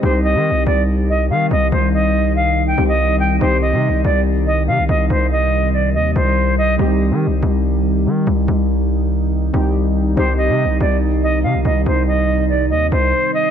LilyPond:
<<
  \new Staff \with { instrumentName = "Flute" } { \time 4/4 \key c \minor \tempo 4 = 142 c''8 ees''4 d''8 r8 ees''8 f''8 ees''8 | c''8 ees''4 f''8. g''8 ees''8. g''8 | c''8 ees''4 d''8 r8 ees''8 f''8 ees''8 | c''8 ees''4 d''8 ees''8 c''4 ees''8 |
r1 | r1 | c''8 ees''4 d''8 r8 ees''8 f''8 ees''8 | c''8 ees''4 d''8 ees''8 c''4 ees''8 | }
  \new Staff \with { instrumentName = "Synth keys" } { \time 4/4 \key c \minor <g c' ees' g'>1~ | <g c' ees' g'>2~ <g c' ees' g'>8 <g c' ees' g'>4. | <g c' ees' g'>1~ | <g c' ees' g'>1 |
<g c' ees' g'>1~ | <g c' ees' g'>2~ <g c' ees' g'>8 <g c' ees' g'>4. | <g c' ees' g'>1~ | <g c' ees' g'>1 | }
  \new Staff \with { instrumentName = "Ambient pad" } { \clef bass \time 4/4 \key c \minor << { ees'1~ | ees'1~ | ees'1~ | ees'1 |
ees'1~ | ees'1~ | ees'1~ | ees'1 | } \\ { <c ees g>1~ | <c ees g>1~ | <c ees g>1~ | <c ees g>1~ |
<c ees g>1~ | <c ees g>1 | <c ees g>1~ | <c ees g>1 | } >> }
  \new Staff \with { instrumentName = "808-style bass" } { \clef bass \time 4/4 \key c \minor c,8. ees16. c,16. c,4. ees8 c,8 | c,2~ c,8 c,4. | c,8. c16. c,16. c,4. c16 c,16 c,8 | c,2 ees,8 c,4. |
c,8. ees16. c,16. c,4. ees8 c,8 | c,2~ c,8 c,4. | c,8. c16. c,16. c,4. c16 c,16 c,8 | c,2 ees,8 c,8 r4 | }
>>